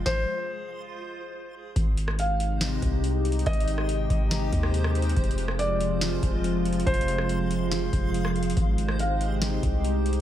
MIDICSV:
0, 0, Header, 1, 6, 480
1, 0, Start_track
1, 0, Key_signature, -4, "major"
1, 0, Tempo, 425532
1, 65, Time_signature, 4, 2, 24, 8
1, 11517, End_track
2, 0, Start_track
2, 0, Title_t, "Felt piano"
2, 0, Program_c, 0, 0
2, 65, Note_on_c, 0, 72, 97
2, 1940, Note_off_c, 0, 72, 0
2, 2475, Note_on_c, 0, 77, 79
2, 2922, Note_off_c, 0, 77, 0
2, 3909, Note_on_c, 0, 75, 117
2, 5782, Note_off_c, 0, 75, 0
2, 6306, Note_on_c, 0, 74, 80
2, 6757, Note_off_c, 0, 74, 0
2, 7743, Note_on_c, 0, 72, 101
2, 9619, Note_off_c, 0, 72, 0
2, 10153, Note_on_c, 0, 77, 80
2, 10601, Note_off_c, 0, 77, 0
2, 11517, End_track
3, 0, Start_track
3, 0, Title_t, "Synth texture"
3, 0, Program_c, 1, 99
3, 0, Note_on_c, 1, 56, 78
3, 0, Note_on_c, 1, 65, 69
3, 0, Note_on_c, 1, 72, 85
3, 1941, Note_off_c, 1, 72, 0
3, 1948, Note_off_c, 1, 56, 0
3, 1948, Note_off_c, 1, 65, 0
3, 1984, Note_on_c, 1, 56, 77
3, 1984, Note_on_c, 1, 67, 71
3, 1985, Note_on_c, 1, 72, 85
3, 5787, Note_off_c, 1, 67, 0
3, 5826, Note_on_c, 1, 65, 70
3, 9628, Note_off_c, 1, 65, 0
3, 9663, Note_on_c, 1, 67, 69
3, 11517, Note_off_c, 1, 56, 0
3, 11517, Note_off_c, 1, 67, 0
3, 11517, Note_off_c, 1, 72, 0
3, 11517, End_track
4, 0, Start_track
4, 0, Title_t, "Ambient pad"
4, 0, Program_c, 2, 92
4, 1983, Note_on_c, 2, 48, 86
4, 1983, Note_on_c, 2, 56, 77
4, 1983, Note_on_c, 2, 63, 96
4, 1984, Note_on_c, 2, 67, 78
4, 5786, Note_off_c, 2, 48, 0
4, 5786, Note_off_c, 2, 63, 0
4, 5787, Note_off_c, 2, 67, 0
4, 5827, Note_on_c, 2, 48, 86
4, 5827, Note_on_c, 2, 53, 80
4, 5827, Note_on_c, 2, 65, 97
4, 9628, Note_off_c, 2, 48, 0
4, 9628, Note_off_c, 2, 53, 0
4, 9628, Note_off_c, 2, 65, 0
4, 9663, Note_on_c, 2, 63, 100
4, 9663, Note_on_c, 2, 67, 76
4, 9664, Note_on_c, 2, 48, 88
4, 11517, Note_off_c, 2, 48, 0
4, 11517, Note_off_c, 2, 56, 0
4, 11517, Note_off_c, 2, 63, 0
4, 11517, Note_off_c, 2, 67, 0
4, 11517, End_track
5, 0, Start_track
5, 0, Title_t, "808-style bass"
5, 0, Program_c, 3, 38
5, 1986, Note_on_c, 3, 32, 118
5, 3140, Note_off_c, 3, 32, 0
5, 3185, Note_on_c, 3, 36, 105
5, 3877, Note_off_c, 3, 36, 0
5, 3905, Note_on_c, 3, 32, 116
5, 4597, Note_off_c, 3, 32, 0
5, 4626, Note_on_c, 3, 32, 109
5, 5087, Note_off_c, 3, 32, 0
5, 5105, Note_on_c, 3, 39, 105
5, 5796, Note_off_c, 3, 39, 0
5, 5826, Note_on_c, 3, 29, 112
5, 6981, Note_off_c, 3, 29, 0
5, 7025, Note_on_c, 3, 29, 110
5, 7717, Note_off_c, 3, 29, 0
5, 7746, Note_on_c, 3, 29, 110
5, 8901, Note_off_c, 3, 29, 0
5, 8944, Note_on_c, 3, 29, 110
5, 9636, Note_off_c, 3, 29, 0
5, 9665, Note_on_c, 3, 32, 119
5, 10820, Note_off_c, 3, 32, 0
5, 10864, Note_on_c, 3, 36, 104
5, 11517, Note_off_c, 3, 36, 0
5, 11517, End_track
6, 0, Start_track
6, 0, Title_t, "Drums"
6, 66, Note_on_c, 9, 36, 108
6, 66, Note_on_c, 9, 38, 92
6, 179, Note_off_c, 9, 36, 0
6, 179, Note_off_c, 9, 38, 0
6, 1986, Note_on_c, 9, 36, 115
6, 1986, Note_on_c, 9, 42, 80
6, 2099, Note_off_c, 9, 36, 0
6, 2099, Note_off_c, 9, 42, 0
6, 2227, Note_on_c, 9, 42, 69
6, 2340, Note_off_c, 9, 42, 0
6, 2343, Note_on_c, 9, 37, 94
6, 2456, Note_off_c, 9, 37, 0
6, 2467, Note_on_c, 9, 42, 82
6, 2580, Note_off_c, 9, 42, 0
6, 2708, Note_on_c, 9, 42, 65
6, 2821, Note_off_c, 9, 42, 0
6, 2943, Note_on_c, 9, 38, 117
6, 2947, Note_on_c, 9, 42, 78
6, 3056, Note_off_c, 9, 38, 0
6, 3060, Note_off_c, 9, 42, 0
6, 3185, Note_on_c, 9, 36, 91
6, 3185, Note_on_c, 9, 42, 77
6, 3298, Note_off_c, 9, 36, 0
6, 3298, Note_off_c, 9, 42, 0
6, 3427, Note_on_c, 9, 42, 73
6, 3540, Note_off_c, 9, 42, 0
6, 3666, Note_on_c, 9, 42, 61
6, 3746, Note_off_c, 9, 42, 0
6, 3746, Note_on_c, 9, 42, 61
6, 3825, Note_off_c, 9, 42, 0
6, 3825, Note_on_c, 9, 42, 60
6, 3905, Note_off_c, 9, 42, 0
6, 3905, Note_on_c, 9, 36, 119
6, 3905, Note_on_c, 9, 42, 62
6, 3985, Note_off_c, 9, 42, 0
6, 3985, Note_on_c, 9, 42, 62
6, 4018, Note_off_c, 9, 36, 0
6, 4066, Note_off_c, 9, 42, 0
6, 4066, Note_on_c, 9, 42, 66
6, 4146, Note_off_c, 9, 42, 0
6, 4146, Note_on_c, 9, 42, 76
6, 4259, Note_off_c, 9, 42, 0
6, 4262, Note_on_c, 9, 37, 89
6, 4375, Note_off_c, 9, 37, 0
6, 4386, Note_on_c, 9, 42, 78
6, 4499, Note_off_c, 9, 42, 0
6, 4625, Note_on_c, 9, 36, 103
6, 4627, Note_on_c, 9, 42, 66
6, 4738, Note_off_c, 9, 36, 0
6, 4740, Note_off_c, 9, 42, 0
6, 4863, Note_on_c, 9, 38, 123
6, 4866, Note_on_c, 9, 42, 76
6, 4975, Note_off_c, 9, 38, 0
6, 4979, Note_off_c, 9, 42, 0
6, 5105, Note_on_c, 9, 36, 89
6, 5105, Note_on_c, 9, 42, 73
6, 5217, Note_off_c, 9, 42, 0
6, 5218, Note_off_c, 9, 36, 0
6, 5225, Note_on_c, 9, 37, 94
6, 5338, Note_off_c, 9, 37, 0
6, 5346, Note_on_c, 9, 42, 74
6, 5459, Note_off_c, 9, 42, 0
6, 5463, Note_on_c, 9, 37, 96
6, 5575, Note_off_c, 9, 37, 0
6, 5586, Note_on_c, 9, 42, 61
6, 5666, Note_off_c, 9, 42, 0
6, 5666, Note_on_c, 9, 42, 61
6, 5746, Note_off_c, 9, 42, 0
6, 5746, Note_on_c, 9, 42, 59
6, 5826, Note_off_c, 9, 42, 0
6, 5826, Note_on_c, 9, 36, 118
6, 5826, Note_on_c, 9, 42, 61
6, 5907, Note_off_c, 9, 42, 0
6, 5907, Note_on_c, 9, 42, 62
6, 5939, Note_off_c, 9, 36, 0
6, 5987, Note_off_c, 9, 42, 0
6, 5987, Note_on_c, 9, 42, 64
6, 6067, Note_off_c, 9, 42, 0
6, 6067, Note_on_c, 9, 42, 72
6, 6180, Note_off_c, 9, 42, 0
6, 6184, Note_on_c, 9, 37, 95
6, 6296, Note_off_c, 9, 37, 0
6, 6307, Note_on_c, 9, 42, 78
6, 6419, Note_off_c, 9, 42, 0
6, 6548, Note_on_c, 9, 42, 65
6, 6661, Note_off_c, 9, 42, 0
6, 6784, Note_on_c, 9, 38, 126
6, 6788, Note_on_c, 9, 42, 77
6, 6896, Note_off_c, 9, 38, 0
6, 6900, Note_off_c, 9, 42, 0
6, 7025, Note_on_c, 9, 36, 91
6, 7026, Note_on_c, 9, 42, 78
6, 7138, Note_off_c, 9, 36, 0
6, 7139, Note_off_c, 9, 42, 0
6, 7267, Note_on_c, 9, 42, 71
6, 7379, Note_off_c, 9, 42, 0
6, 7507, Note_on_c, 9, 42, 60
6, 7586, Note_off_c, 9, 42, 0
6, 7586, Note_on_c, 9, 42, 62
6, 7666, Note_off_c, 9, 42, 0
6, 7666, Note_on_c, 9, 42, 61
6, 7746, Note_off_c, 9, 42, 0
6, 7746, Note_on_c, 9, 36, 113
6, 7746, Note_on_c, 9, 42, 63
6, 7826, Note_off_c, 9, 42, 0
6, 7826, Note_on_c, 9, 42, 64
6, 7859, Note_off_c, 9, 36, 0
6, 7907, Note_off_c, 9, 42, 0
6, 7907, Note_on_c, 9, 42, 66
6, 7988, Note_off_c, 9, 42, 0
6, 7988, Note_on_c, 9, 42, 72
6, 8101, Note_off_c, 9, 42, 0
6, 8104, Note_on_c, 9, 37, 91
6, 8216, Note_off_c, 9, 37, 0
6, 8227, Note_on_c, 9, 42, 78
6, 8340, Note_off_c, 9, 42, 0
6, 8467, Note_on_c, 9, 42, 67
6, 8580, Note_off_c, 9, 42, 0
6, 8703, Note_on_c, 9, 38, 118
6, 8706, Note_on_c, 9, 42, 75
6, 8815, Note_off_c, 9, 38, 0
6, 8819, Note_off_c, 9, 42, 0
6, 8944, Note_on_c, 9, 36, 89
6, 8945, Note_on_c, 9, 42, 73
6, 9057, Note_off_c, 9, 36, 0
6, 9058, Note_off_c, 9, 42, 0
6, 9186, Note_on_c, 9, 42, 74
6, 9298, Note_off_c, 9, 42, 0
6, 9302, Note_on_c, 9, 37, 92
6, 9415, Note_off_c, 9, 37, 0
6, 9426, Note_on_c, 9, 42, 43
6, 9505, Note_off_c, 9, 42, 0
6, 9505, Note_on_c, 9, 42, 60
6, 9585, Note_off_c, 9, 42, 0
6, 9585, Note_on_c, 9, 42, 72
6, 9664, Note_off_c, 9, 42, 0
6, 9664, Note_on_c, 9, 42, 78
6, 9665, Note_on_c, 9, 36, 116
6, 9777, Note_off_c, 9, 36, 0
6, 9777, Note_off_c, 9, 42, 0
6, 9906, Note_on_c, 9, 42, 75
6, 10018, Note_off_c, 9, 42, 0
6, 10022, Note_on_c, 9, 37, 94
6, 10135, Note_off_c, 9, 37, 0
6, 10145, Note_on_c, 9, 42, 79
6, 10258, Note_off_c, 9, 42, 0
6, 10386, Note_on_c, 9, 42, 62
6, 10499, Note_off_c, 9, 42, 0
6, 10621, Note_on_c, 9, 38, 121
6, 10625, Note_on_c, 9, 42, 74
6, 10734, Note_off_c, 9, 38, 0
6, 10738, Note_off_c, 9, 42, 0
6, 10864, Note_on_c, 9, 36, 91
6, 10864, Note_on_c, 9, 42, 73
6, 10976, Note_off_c, 9, 36, 0
6, 10977, Note_off_c, 9, 42, 0
6, 11105, Note_on_c, 9, 42, 70
6, 11218, Note_off_c, 9, 42, 0
6, 11345, Note_on_c, 9, 42, 60
6, 11424, Note_off_c, 9, 42, 0
6, 11424, Note_on_c, 9, 42, 61
6, 11517, Note_off_c, 9, 42, 0
6, 11517, End_track
0, 0, End_of_file